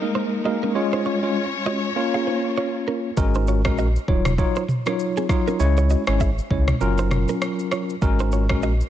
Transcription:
Already playing: string section G#3 A#3 D#4 A#4
0.02 tine electric piano G#3 A#3 D#4 A#4
0.15 clean electric guitar D#4 C5
0.45 tine electric piano G#3 A#3 D#4 A#4, clean electric guitar F#4 D#5
0.63 clean electric guitar C#4 A#4
0.75 tine electric piano G#3 C#4 F4 C#5, string section C#4 F4 C#5
0.93 clean electric guitar D#4 C5
1.06 clean electric guitar F4 C#5
1.23 tine electric piano G#3 C#4 F4 C#5
1.66 tine electric piano G#3 C#4 F4 C#5, clean electric guitar F#4 D#5
1.96 tine electric piano A#3 C#4 F4 C#5, string section A#3 F4
2.14 clean electric guitar G#4 F5
2.27 clean electric guitar D#4 C5
2.58 clean electric guitar F4 C#5
2.88 clean electric guitar C#4 A#4
3.17 sub bass G#1, tine electric piano G#3 C#4 F#4 A#4, kick, shaker
3.34 clean electric guitar D#4 C5, shaker
3.47 clean electric guitar F4 C#5, shaker
3.65 sub bass A#1, tine electric piano G#3 C#4 F#4 A#4, kick, cross-stick, shaker
3.78 clean electric guitar F#4 D#5, shaker
3.96 shaker
4.08 sub bass D#1, tine electric piano F#3 D#4 F4 C#5, kick
4.25 cross-stick, mid tom, shaker
4.38 tine electric piano F#3 D#4 F4 C#5, kick, shaker
4.55 clean electric guitar D#4 C5, shaker
4.68 mid tom, shaker
4.86 tine electric piano F#3 D#4 F4 C#5, clean electric guitar C#4 A#4, cross-stick, shaker
4.99 shaker
5.17 clean electric guitar C4 G#4, shaker
5.29 tine electric piano F#3 D#4 F4 C#5, kick, cross-stick, shaker
5.47 clean electric guitar C#4 A#4, shaker
5.59 sub bass C#2, tine electric piano G#3 C#4 E4 C#5, shaker
5.77 clean electric guitar E4 C#5, shaker
5.90 clean electric guitar F#4 D#5, shaker
6.07 sub bass G#1, tine electric piano G#3 C#4 E4 C#5, cross-stick, shaker
6.20 clean electric guitar G#4 E5, kick, shaker
6.38 shaker
6.50 sub bass C#2, tine electric piano G#3 C#4 E4 C#5, kick
6.68 cross-stick, mid tom, shaker
6.81 sub bass F#1, tine electric piano F#3 C#4 F4 A#4, shaker
6.98 clean electric guitar D#4 C5, shaker
7.11 cross-stick, mid tom, shaker
7.28 clean electric guitar C#4 A#4, shaker
7.42 cross-stick, shaker
7.59 shaker
7.72 clean electric guitar F4 C#5, cross-stick, shaker
7.90 shaker
8.02 sub bass G#1, tine electric piano G#3 C#4 F#4 A#4, kick, shaker
8.19 clean electric guitar D#4 C5, shaker
8.32 clean electric guitar F4 C#5, shaker
8.49 sub bass A#1, tine electric piano G#3 C#4 F#4 A#4, kick, cross-stick, shaker
8.62 clean electric guitar F#4 D#5, shaker
8.81 shaker

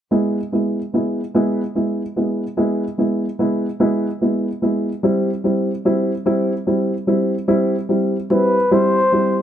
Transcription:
0.11 upright piano G#3 B3 E4
0.52 upright piano G#3 B3 E4
0.94 upright piano G#3 B3 E4
1.34 upright piano G#3 B3 E4
1.75 upright piano G#3 B3 E4
2.16 upright piano G#3 B3 E4
2.57 upright piano G#3 B3 E4
2.98 upright piano G#3 B3 E4
3.39 upright piano G#3 B3 E4
3.80 upright piano G#3 B3 E4
4.21 upright piano G#3 B3 E4
4.62 upright piano G#3 B3 E4
5.03 upright piano G3 C4 E4
5.44 upright piano G3 C4 E4
5.85 upright piano G3 C4 E4
6.26 upright piano G3 C4 E4
6.67 upright piano G3 C4 E4
7.07 upright piano G3 C4 E4
7.48 upright piano G3 C4 E4
7.89 upright piano G3 C4 E4
8.30 upright piano G3 C4 E4, flugelhorn B4
8.71 upright piano G3 C4 E4, flugelhorn C5
9.12 upright piano G3 C4 E4

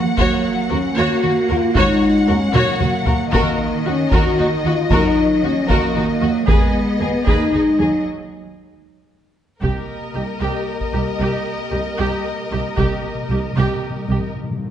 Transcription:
Already playing: cello section F3, french horn section A#3, violin section F#5
0.17 double bass section D#2, cello section F#3, french horn section A#3, viola section F#4, violin section C#5, taiko
0.70 double bass section D#2, french horn section C#4, viola section F#4, violin section A#4
0.96 double bass section D#2, cello section A#3, viola section F#4, french horn section F#4, violin section C#5
1.22 double bass section D#2, viola section F#4, violin section F#4
1.49 double bass section D#2, french horn section F4, viola section F#4, violin section A#4
1.75 double bass section D#2, cello section G#3, french horn section D#4, viola section F#4, violin section C#5 F#5, taiko
2.28 double bass section D#2, french horn section C#4, viola section F#4, violin section A#4
2.53 double bass section D#2, cello section F#3, french horn section A#3, viola section F#4, violin section C#5, taiko mid
2.80 double bass section D#2, viola section F#4, violin section F#4, taiko mid
3.06 double bass section D#2, viola section F#4, violin section A#4, taiko low
3.32 double bass section D#2, cello section D#3, french horn section A#3, viola section F#4, violin section A#4 D#5, taiko
3.85 double bass section D#2, french horn section C#4, viola section F#4, violin section F#4
4.11 double bass section D#2, viola section F#4, french horn section F#4, violin section A#4, taiko
4.38 double bass section D#2, violin section D#4, viola section F#4
4.64 double bass section D#2, french horn section F4, violin section F#4, viola section F#4
4.90 double bass section D#2, cello section F#3, french horn section D#4, viola section F#4, violin section A#4, taiko
5.43 double bass section D#2, french horn section C#4, violin section F#4, viola section F#4
5.68 double bass section D#2, cello section F3, french horn section A#3, viola section F#4, violin section A#4, taiko
5.95 double bass section D#2, cello section D#3, violin section D#4, viola section F#4
6.21 double bass section D#2, cello section F#3, viola section F#4, violin section F#4
6.47 double bass section D#2, french horn section G#3, cello section B3, viola section G#4, violin section B4 D#5, taiko
7.00 double bass section D#2, french horn section B3, viola section G#4, violin section G#4
7.25 double bass section D#2, cello section A#3, french horn section D#4, viola section G#4, violin section B4, taiko
7.52 double bass section D#2, cello section G#3, violin section D#4, viola section G#4
7.79 double bass section D#2, cello section F#3, viola section G#4, violin section G#4
9.62 cello section C2, double bass section C2, french horn section A#3 G4, viola section G4, violin section A#4 D#5, taiko
10.14 cello section C2, double bass section C2, viola section G4
10.40 double bass section C2, cello section C2, viola section G4
10.80 taiko
10.93 double bass section C2, cello section C2, viola section G4
11.19 double bass section C2, cello section C2, viola section G4
11.71 double bass section C2, cello section C2, viola section G4
11.97 double bass section C2, cello section C2, viola section G4
12.51 double bass section C2, cello section C2, viola section G4
12.77 double bass section C2, cello section C2, timpani C3, viola section G4, taiko
12.93 timpani C3
13.01 timpani C3
13.08 timpani C3
13.15 timpani C3
13.23 timpani C3
13.30 double bass section C2, cello section C2, timpani C3, viola section G4
13.39 timpani C3
13.46 timpani C3
13.53 double bass section C2, timpani C3
13.57 cello section C2, viola section G4
13.68 timpani C3
13.75 timpani C3
13.82 timpani C3
13.90 timpani C3
13.98 timpani C3
14.05 cello section C2, double bass section C2, timpani C3
14.10 timpani C3, viola section G4
14.20 timpani C3
14.27 timpani C3
14.35 timpani C3, cymbal swell
14.43 timpani C3
14.51 timpani C3
14.57 timpani C3
14.65 timpani C3

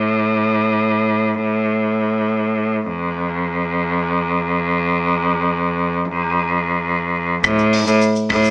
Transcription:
Already playing: cello A2
2.87 cello F2
7.44 cello A2, kick, cabasa, claves
7.59 cabasa
7.73 open hi-hat
7.87 cello A2, cabasa
8.01 cabasa
8.16 cabasa
8.30 cello A2, kick, open hi-hat, claves
8.44 cabasa
8.46 cabasa

